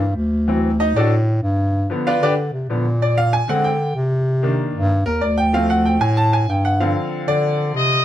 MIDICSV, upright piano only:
0, 0, Header, 1, 2, 480
1, 0, Start_track
1, 0, Tempo, 316122
1, 732, Time_signature, 4, 2, 24, 8
1, 12222, End_track
2, 0, Start_track
2, 0, Title_t, "Upright piano"
2, 0, Program_c, 0, 0
2, 725, Note_on_c, 0, 52, 61
2, 734, Note_on_c, 0, 54, 52
2, 742, Note_on_c, 0, 60, 58
2, 1048, Note_off_c, 0, 52, 0
2, 1053, Note_off_c, 0, 54, 0
2, 1057, Note_off_c, 0, 60, 0
2, 1215, Note_on_c, 0, 75, 97
2, 1219, Note_on_c, 0, 63, 85
2, 1447, Note_off_c, 0, 75, 0
2, 1449, Note_off_c, 0, 63, 0
2, 1464, Note_on_c, 0, 74, 91
2, 1467, Note_on_c, 0, 62, 72
2, 1473, Note_on_c, 0, 66, 68
2, 1476, Note_on_c, 0, 69, 72
2, 1692, Note_off_c, 0, 74, 0
2, 1694, Note_off_c, 0, 62, 0
2, 1697, Note_off_c, 0, 66, 0
2, 1698, Note_off_c, 0, 69, 0
2, 2882, Note_on_c, 0, 50, 57
2, 2892, Note_on_c, 0, 53, 48
2, 2904, Note_on_c, 0, 59, 63
2, 3140, Note_on_c, 0, 77, 95
2, 3145, Note_on_c, 0, 71, 77
2, 3146, Note_on_c, 0, 74, 78
2, 3151, Note_on_c, 0, 65, 78
2, 3208, Note_off_c, 0, 50, 0
2, 3213, Note_off_c, 0, 53, 0
2, 3219, Note_off_c, 0, 59, 0
2, 3362, Note_off_c, 0, 74, 0
2, 3365, Note_off_c, 0, 71, 0
2, 3371, Note_off_c, 0, 77, 0
2, 3377, Note_off_c, 0, 65, 0
2, 3385, Note_on_c, 0, 74, 100
2, 3388, Note_on_c, 0, 62, 80
2, 3388, Note_on_c, 0, 71, 82
2, 3390, Note_on_c, 0, 67, 80
2, 3526, Note_off_c, 0, 74, 0
2, 3528, Note_off_c, 0, 62, 0
2, 3528, Note_off_c, 0, 71, 0
2, 3530, Note_off_c, 0, 67, 0
2, 4095, Note_on_c, 0, 50, 45
2, 4105, Note_on_c, 0, 53, 48
2, 4106, Note_on_c, 0, 59, 54
2, 4312, Note_off_c, 0, 50, 0
2, 4317, Note_off_c, 0, 53, 0
2, 4318, Note_off_c, 0, 59, 0
2, 4589, Note_on_c, 0, 74, 92
2, 4816, Note_off_c, 0, 74, 0
2, 4822, Note_on_c, 0, 77, 101
2, 5052, Note_off_c, 0, 77, 0
2, 5058, Note_on_c, 0, 80, 104
2, 5284, Note_on_c, 0, 50, 55
2, 5290, Note_off_c, 0, 80, 0
2, 5302, Note_on_c, 0, 56, 50
2, 5305, Note_on_c, 0, 78, 95
2, 5309, Note_on_c, 0, 60, 65
2, 5532, Note_on_c, 0, 79, 92
2, 5534, Note_off_c, 0, 78, 0
2, 5609, Note_off_c, 0, 50, 0
2, 5619, Note_off_c, 0, 56, 0
2, 5623, Note_off_c, 0, 60, 0
2, 5981, Note_off_c, 0, 79, 0
2, 6722, Note_on_c, 0, 51, 56
2, 6727, Note_on_c, 0, 58, 51
2, 6739, Note_on_c, 0, 62, 62
2, 7412, Note_off_c, 0, 51, 0
2, 7415, Note_off_c, 0, 58, 0
2, 7421, Note_off_c, 0, 62, 0
2, 7681, Note_on_c, 0, 70, 93
2, 7917, Note_on_c, 0, 74, 87
2, 7921, Note_off_c, 0, 70, 0
2, 8159, Note_off_c, 0, 74, 0
2, 8163, Note_on_c, 0, 79, 100
2, 8400, Note_on_c, 0, 53, 61
2, 8402, Note_off_c, 0, 79, 0
2, 8411, Note_on_c, 0, 57, 54
2, 8414, Note_on_c, 0, 77, 93
2, 8426, Note_on_c, 0, 60, 65
2, 8647, Note_off_c, 0, 77, 0
2, 8655, Note_on_c, 0, 78, 97
2, 8888, Note_off_c, 0, 78, 0
2, 8890, Note_on_c, 0, 79, 86
2, 9091, Note_off_c, 0, 53, 0
2, 9096, Note_off_c, 0, 57, 0
2, 9104, Note_off_c, 0, 60, 0
2, 9124, Note_on_c, 0, 80, 102
2, 9125, Note_off_c, 0, 79, 0
2, 9362, Note_off_c, 0, 80, 0
2, 9369, Note_on_c, 0, 81, 109
2, 9604, Note_off_c, 0, 81, 0
2, 9615, Note_on_c, 0, 80, 93
2, 9847, Note_off_c, 0, 80, 0
2, 9864, Note_on_c, 0, 79, 78
2, 10091, Note_off_c, 0, 79, 0
2, 10095, Note_on_c, 0, 78, 88
2, 10326, Note_on_c, 0, 53, 58
2, 10327, Note_off_c, 0, 78, 0
2, 10333, Note_on_c, 0, 77, 79
2, 10336, Note_on_c, 0, 60, 56
2, 10344, Note_on_c, 0, 50, 67
2, 11001, Note_off_c, 0, 77, 0
2, 11053, Note_on_c, 0, 74, 103
2, 11720, Note_off_c, 0, 74, 0
2, 12185, Note_off_c, 0, 53, 0
2, 12190, Note_off_c, 0, 60, 0
2, 12194, Note_off_c, 0, 50, 0
2, 12222, End_track
0, 0, End_of_file